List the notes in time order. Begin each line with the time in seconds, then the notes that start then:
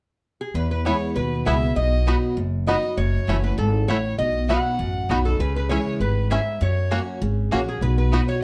0.41 G#4
0.54 E2 B4
0.71 B4
0.85 E3 G#3 B3 E4 B4 C#5 G#5
1.16 D#2 B2 B4
1.45 C#2 E3 G#3 B3 E4 B4 E5 G#5
1.61 B3 E4
1.76 B1 B2 D#5
2.06 F#3 B3 D#4 F#4 D#5 B5
2.37 F#1 F#2
2.67 F#3 B3 D#4 F#4 D#5 B5
2.82 D#4 F#4
2.97 F#1 F#2 C#5
3.27 F#1 E3 A3 C#4 E4 F#4 C#5 F#5
3.44 B4
3.58 G#1 G#2 A4
3.88 A1 A2 A3 C#4 E4 C#5 F#5
4.18 B1 B2 D#5
4.48 F#3 B3 D#4 F#4 D#5 F#5 B5
4.79 A1 F#2
5.09 B1 F#3 B3 D#4 F#4 D#5 B5
5.25 D#4 F#4 A4
5.39 C#2 C#3 B4
5.56 B4
5.69 E3 G#3 C#4 E4 G#4 C#5 E5 G#5
6.00 G#1 A2 B4
6.30 G#2 C#4 E4 G#4 E5 G#5
6.61 F#2 C#5
6.91 F#3 A#3 C#4 F#4 C#5 F#5
7.21 G#1 C#3
7.51 A#1 F#3 A#3 C#4 F#4 C#5 F#5
7.68 G#4
7.81 B1 B2 B4
7.98 B4
8.12 F#3 B3 D#4 F#4 D#5 B5
8.28 D#4 F#4 C#5